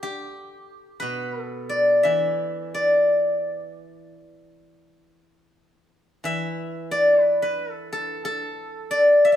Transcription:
Already playing: A4 B4
0.03 G4
1.00 B2 B4
1.42 A4
1.69 D5
2.03 E3 E5
2.74 D5
6.24 E3 E5
6.91 D5
7.22 B4
7.42 B4
7.71 A4
7.93 A4
8.25 A4
8.91 D5
9.25 E5
9.32 E5

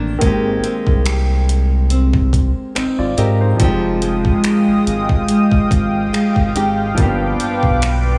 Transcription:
Already playing: A1 C3 D#3 A#3 C4 D4 G4
0.18 G#1 D#3 G#3 A#3, kick, closed hi-hat
0.24 C4 G4
0.64 C4, closed hi-hat
0.87 C2, kick
1.06 G4, finger snap, closed hi-hat
1.49 closed hi-hat
1.90 C4, closed hi-hat
2.13 kick
2.33 kick, closed hi-hat
2.75 G#1 C4 D#4 C5, finger snap, closed hi-hat
2.98 G#1 F4 D5
3.17 G#2 C4 G4 A#4 D#5, closed hi-hat
3.41 D#4 C5
3.56 F1 F3 G3 G#3 C4 F5 G5 D#6, kick, closed hi-hat
3.62 G#3 D#4 G4
4.02 G#3, closed hi-hat
4.25 kick
4.44 D#4, finger snap, closed hi-hat
4.67 G#1
4.86 G#1, closed hi-hat
5.09 kick
5.29 G#3, closed hi-hat
5.52 kick
5.71 G#1, kick, closed hi-hat
6.13 G#3, finger snap, closed hi-hat
6.36 G#1, kick
6.55 G#1 G#3 D#4 G4, closed hi-hat
6.94 G1 G2 F3 G3 A#3 B4 D6, kick, closed hi-hat
7.00 D4 G4
7.04 B3
7.40 F3, closed hi-hat
7.63 B1, kick
7.82 B3, finger snap, closed hi-hat

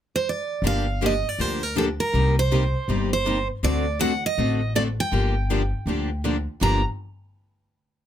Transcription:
0.16 C5
0.29 D5
0.62 G1 D3 F3 A#3 D4 G4
0.67 F5
1.01 D3 F3 A#3 D4 G4
1.06 D#5
1.29 D5
1.39 D2 D3 F3 A#3 D4 G4 C5
1.63 A#4
1.76 D3 F3 A#3 D4 G4 A4
2.00 A#4
2.14 C2 C3 G3 A#3 D#4 G4
2.39 C5
2.51 C3 G3 A#3 D#4 G4
2.88 G1 C3 G3 A#3 D#4 G4
3.13 C5
3.26 C3 G3 A#3 D#4 G4
3.63 D2 D3 A3 C4 F#4 A4 D5
3.99 D3 A3 C4 F#4 A4 F#5
4.26 D#5
4.38 A1 D3 A3 C4 F#4 A4
4.76 D3 A3 C4 F#4 A4 D5
5.00 G5
5.12 G1 D3 F3 A#3 D4 G4
5.50 D3 F3 A#3 D4 G4
5.86 D2 D3 F3 A#3 D4 G4
6.24 D3 F3 A#3 D4 G4
6.61 G1 G2 D3 F3 A#3 D4 G4 A#5

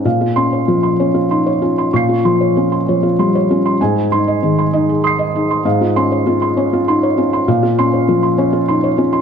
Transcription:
0.05 A#2 F5
0.21 F4
0.36 C#4 C6
0.53 C#5
0.68 F3 F4
0.83 C6
0.99 C#4 C#5
1.14 F4
1.31 D#4 C6
1.46 C#5
1.62 C#4 F4
1.78 C6
1.93 A#2 F5 C#6 C7
2.09 F4
2.25 F3 C6
2.41 C#5
2.57 C#4 F4
2.72 C6
2.88 F3 C#5
3.03 F4
3.19 G3 C6
3.35 C#5
3.51 C#4 F4
3.66 C6
3.81 G#2 G#5
3.96 G#4
4.12 D#4 C6
4.28 D#5
4.43 D#3 G#4
4.58 C6
4.73 D#4 D#5
4.89 G#4
5.04 C6 D#6 C7
5.19 D#5
5.35 D#4 G#4
5.51 C6
5.65 G#2 F5
5.81 F4
5.96 C#4 C6
6.12 C#5
6.27 G#3 F4
6.42 C6
6.57 C#4 C#5
6.73 F4
6.88 D#4 C6
7.03 C#5
7.18 C#4 F4
7.33 C6
7.48 A#2 F5
7.63 F4
7.79 C#4 C6
7.93 C#5
8.08 F3 F4
8.23 C6
8.38 C#4 C#5
8.53 F4
8.68 D#4 C6
8.84 C#5
8.98 C#4 F4
9.13 C6

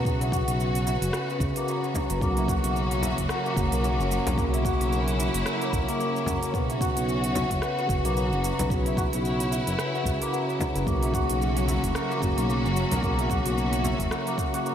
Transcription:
Already playing: B1 C#3 F#3 C#4 E4 F#4 B4
0.04 C#3 B3 F#4, kick, shaker
0.21 E4, open hi-hat, shaker
0.32 F#4, kick, shaker
0.47 B1, open hi-hat, shaker
0.60 shaker
0.75 open hi-hat, shaker
0.86 E4, shaker
1.02 F#1, open hi-hat, shaker
1.13 B4, cross-stick, shaker
1.30 B3, shaker
1.39 C#2 C#3, kick, shaker
1.43 F#4
1.56 A#3, open hi-hat, shaker
1.68 B3, shaker
1.84 shaker
1.94 F#3, kick, frame drum, shaker
2.10 F#1 B4, open hi-hat, shaker
2.20 B1 C#3 F#3 A#3 F#4, kick, shaker
2.37 E4, open hi-hat, shaker
2.48 F#4, kick, shaker
2.64 B1, open hi-hat, shaker
2.76 shaker
2.91 open hi-hat, shaker
3.02 E4, frame drum, shaker
3.18 F#1, kick, open hi-hat, shaker
3.29 A#4, cross-stick, shaker
3.46 A#3, shaker
3.55 F#1 C#3 A#3, kick, shaker
3.59 F#4
3.72 B1 A#3, open hi-hat, shaker
3.84 A#3, shaker
3.99 F#1, shaker
4.11 F#3, shaker
4.26 B1 A#4, open hi-hat, frame drum, shaker
4.36 C#3 A#3 E4, kick, shaker
4.40 F#4
4.53 E4, open hi-hat, shaker
4.65 F#4, kick, shaker
4.80 B1, open hi-hat, shaker
4.93 shaker
5.08 open hi-hat, shaker
5.19 E4, shaker
5.34 F#1, open hi-hat, shaker
5.46 A#4, cross-stick, shaker
5.61 A#3, open hi-hat, shaker
5.73 B1, kick, shaker
5.88 C#3 A#3 A#4, open hi-hat, shaker
6.00 A#3, shaker
6.16 shaker
6.26 F#1 F#3, kick, frame drum, shaker
6.42 A#4, open hi-hat, shaker
6.52 B1 C#3 B3 F#4, kick, shaker
6.56 F#4
6.70 E4, open hi-hat, shaker
6.81 F#4, kick, shaker
6.97 B1, open hi-hat, shaker
7.09 shaker
7.24 open hi-hat, shaker
7.35 E4, frame drum, shaker
7.51 F#1, kick, open hi-hat, shaker
7.62 B4, cross-stick, shaker
7.78 B3, shaker
7.87 F#1 C#3, kick, shaker
7.91 F#4
8.05 B1 A#3, open hi-hat, shaker
8.16 B3, shaker
8.32 F#1, shaker
8.43 F#3, shaker
8.59 B1 B4, open hi-hat, frame drum, shaker
8.69 C#3 B3 E4 F#4, kick, shaker
8.86 E4, open hi-hat, shaker
8.97 F#4, kick, shaker
9.13 B1, open hi-hat, shaker
9.25 shaker
9.40 open hi-hat, shaker
9.52 E4, shaker
9.67 F#1, open hi-hat, shaker
9.79 B4, cross-stick, shaker
9.94 B3, shaker
10.03 C#2 C#3, kick, shaker
10.08 F#4
10.21 A#3, open hi-hat, shaker
10.32 B3, shaker
10.49 shaker
10.60 F#3, kick, frame drum, shaker
10.75 F#1 B4, open hi-hat, shaker
10.85 B1 C#3 F#3 A#3 C#4 F#4, kick, shaker
10.89 F#4
11.03 E4, open hi-hat, shaker
11.14 F#4, kick, shaker
11.30 B1, open hi-hat, shaker
11.42 shaker
11.57 open hi-hat, shaker
11.68 E4, frame drum, shaker
11.83 F#1, kick, open hi-hat, shaker
11.95 A#4, cross-stick, shaker
12.10 A#3, shaker
12.20 F#1 C#3 A#3, kick, shaker
12.24 F#4
12.37 B1 A#3, open hi-hat, shaker
12.49 A#3, shaker
12.65 F#1, shaker
12.76 F#3, shaker
12.91 B1 A#4, open hi-hat, frame drum, shaker
13.02 C#3 A#3, kick, shaker
13.06 F#4
13.19 E4, open hi-hat, shaker
13.30 F#4, kick, shaker
13.46 B1, open hi-hat, shaker
13.58 shaker
13.73 open hi-hat, shaker
13.84 E4, frame drum, shaker
13.99 F#1, kick, open hi-hat, shaker
14.11 A#4, cross-stick, shaker
14.27 A#3, open hi-hat, shaker
14.38 kick, shaker
14.53 C#3 A#3 F#4 A#4, open hi-hat, shaker
14.65 A#3, shaker

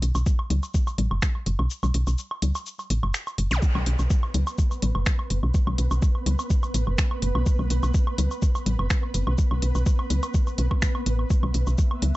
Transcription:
0.02 B1, open hi-hat
0.15 B1, cabasa, low woodblock
0.26 kick, cabasa
0.39 low woodblock
0.50 C#2, open hi-hat, low conga
0.63 cabasa, low woodblock
0.74 kick, cabasa
0.87 cabasa, low woodblock
0.98 A1, open hi-hat, low conga
1.11 F#1, low woodblock
1.22 finger snap, kick, cabasa
1.35 low woodblock
1.46 F#1, open hi-hat
1.59 B1, low woodblock
1.70 cabasa
1.83 B1, low conga, cabasa, low woodblock
1.94 B1, open hi-hat
2.07 B1, cabasa, low woodblock
2.18 cabasa
2.31 low woodblock
2.42 C#2, open hi-hat, low conga
2.55 cabasa, low woodblock
2.66 cabasa
2.79 cabasa, low woodblock
2.90 A1, open hi-hat
3.03 F#1, low woodblock
3.14 finger snap, cabasa
3.27 cabasa, low woodblock
3.38 F#1, open hi-hat
3.51 B1, open hi-hat, zap, cabasa, low woodblock
3.62 B3 B4, kick, cabasa
3.75 B1, low conga, low woodblock
3.86 B1, open hi-hat
3.99 B1, cabasa, low woodblock
4.10 kick, cabasa
4.23 low woodblock
4.34 C#2, open hi-hat, low conga
4.47 cabasa, low woodblock
4.58 kick, cabasa
4.71 cabasa, low woodblock
4.82 A1, open hi-hat, low conga
4.95 F#1, low woodblock
5.06 finger snap, kick, cabasa
5.19 low woodblock
5.30 F#1, open hi-hat
5.43 B1, low woodblock
5.54 kick, cabasa
5.67 B1, low conga, low woodblock
5.78 B1, open hi-hat
5.91 B1, cabasa, low woodblock
6.02 kick, cabasa
6.15 low woodblock
6.26 C#2, open hi-hat, low conga
6.39 cabasa, low woodblock
6.50 kick, cabasa
6.63 cabasa, low woodblock
6.74 A1, open hi-hat
6.87 F#1, low woodblock
6.98 finger snap, kick, cabasa
7.11 low woodblock
7.22 F#1, open hi-hat
7.35 B1, low woodblock
7.46 kick, cabasa
7.59 B1, low conga, low woodblock
7.70 B1, open hi-hat
7.83 B1, cabasa, low woodblock
7.94 kick, cabasa
8.07 low woodblock
8.18 C#2, open hi-hat, low conga
8.31 cabasa, low woodblock
8.42 kick, cabasa
8.55 cabasa, low woodblock
8.66 A1, open hi-hat, low conga
8.79 F#1, low woodblock
8.90 finger snap, kick, cabasa
9.03 low woodblock
9.14 F#1, open hi-hat
9.27 B1, low woodblock
9.38 kick, cabasa
9.51 B1, low conga, low woodblock
9.62 B1, open hi-hat
9.75 B1, cabasa, low woodblock
9.86 kick, cabasa
9.99 low woodblock
10.10 C#2, open hi-hat, low conga
10.23 open hi-hat, cabasa, low woodblock
10.34 kick, cabasa
10.47 cabasa, low woodblock
10.58 B1, open hi-hat
10.71 kick, low woodblock
10.82 finger snap, kick, cabasa
10.95 low woodblock
11.06 A1, open hi-hat
11.19 low woodblock
11.30 E5, kick, cabasa
11.43 B1, low conga, low woodblock
11.54 B1, open hi-hat
11.67 B1, cabasa, low woodblock
11.78 kick, cabasa
11.91 low woodblock
12.02 C#2, open hi-hat, low conga

